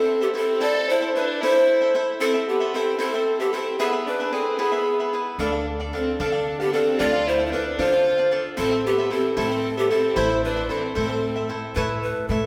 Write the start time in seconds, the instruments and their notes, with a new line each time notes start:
Already playing: violin section C4, cavaquinho A4 C5 E5, pan flute A4
0.21 violin section B3, pan flute G4, cavaquinho A4 C5 E5
0.34 violin section C4, cavaquinho E4 A4 C5 E5, pan flute A4
0.60 cavaquinho E4 A4 C5 E5, violin section A4, pan flute D5
0.74 cavaquinho A4 C5 E5
0.89 violin section E4, pan flute C5
1.01 cavaquinho A4 C5 E5
1.15 violin section D4, cavaquinho E4 A4 C5 E5, pan flute B4
1.42 violin section E4, cavaquinho E4 A4 C5 E5, pan flute C5
1.56 cavaquinho A4 C5
1.81 cavaquinho A4 C5 E5
1.94 cavaquinho E4 A4 C5 E5
2.20 violin section C4, cavaquinho E4 A4 C5 E5, pan flute A4
2.34 cavaquinho A4 C5 E5
2.48 violin section B3, pan flute G4
2.60 cavaquinho A4 C5 E5
2.74 violin section C4, cavaquinho E4 A4 C5 E5, pan flute A4
2.99 violin section C4, cavaquinho E4 A4 C5 E5, pan flute A4
3.14 cavaquinho A4 C5 E5
3.40 violin section B3, pan flute G4, cavaquinho A4 C5 E5
3.53 violin section C4, cavaquinho E4 A4 C5 E5, pan flute A4
3.79 violin section B3, cavaquinho E4 G#4 B4 E5, pan flute G#4
3.92 cavaquinho G#4 B4 E5
4.07 violin section D4, pan flute B4
4.20 cavaquinho G#4 B4 E5
4.32 violin section C4, cavaquinho E4 G#4 B4 E5, pan flute A4
4.59 violin section B3, cavaquinho E4 G#4 B4 E5, pan flute G#4
4.72 cavaquinho G#4 B4 E5
5.00 cavaquinho G#4 B4 E5
5.13 cavaquinho E4 G#4 B4 E5
5.38 upright bass D2, cavaquinho D4 A4 D5 F5, violin section D4, pan flute A4
5.52 cavaquinho A4 D5 F5
5.80 cavaquinho A4 D5 F5
5.93 violin section C4, cavaquinho D4 A4 D5 F5, pan flute A4
6.20 upright bass D3, cavaquinho D4 A4 D5 F5, violin section D4, pan flute A4
6.32 cavaquinho A4 D5 F5
6.60 violin section B3, pan flute G4, cavaquinho A4 D5 F5
6.73 violin section C4, cavaquinho D4 A4 D5 F5, pan flute A4
6.99 upright bass D2, cavaquinho D4 A4 D5 F5, violin section F4, pan flute D5
7.13 cavaquinho A4 D5 F5
7.28 violin section E4, pan flute C5
7.39 cavaquinho A4 D5 F5
7.45 violin section E4, pan flute C5
7.52 cavaquinho D4 A4 D5 F5, violin section D4, pan flute B4
7.78 upright bass D3, cavaquinho D4 A4 D5 F5, violin section F4, pan flute C5
7.92 cavaquinho A4 D5 F5
8.18 cavaquinho A4 D5 F5
8.31 cavaquinho D4 A4 D5 F5
8.57 upright bass A1, violin section C4, cavaquinho E4 A4 C5 E5, pan flute A4
8.71 cavaquinho A4 C5 E5
8.85 violin section B3, pan flute G4
8.98 cavaquinho A4 C5 E5
9.10 violin section C4, cavaquinho E4 A4 C5 E5, pan flute A4
9.37 upright bass A2, violin section C4, cavaquinho E4 A4 C5 E5, pan flute A4
9.50 cavaquinho A4 C5 E5
9.77 violin section B3, pan flute G4, cavaquinho A4 C5 E5
9.90 violin section C4, cavaquinho E4 A4 C5 E5, pan flute A4
10.16 upright bass A1, cavaquinho E4 A4 C5 E5, violin section E4, pan flute C5
10.29 cavaquinho A4 C5 E5
10.44 violin section D4, pan flute B4
10.56 cavaquinho A4 C5 E5
10.69 violin section C4, cavaquinho E4 A4 C5 E5, pan flute A4
10.95 upright bass A2, violin section C4, cavaquinho E4 A4 C5 E5, pan flute A4
11.08 cavaquinho A4 C5 E5
11.36 cavaquinho A4 C5 E5
11.49 cavaquinho E4 A4 C5 E5
11.75 upright bass A2, cavaquinho E4 A4 C#5 E5, pan flute B4
12.02 pan flute B4
12.28 upright bass A2, cavaquinho E4 A4 C#5 E5, pan flute A4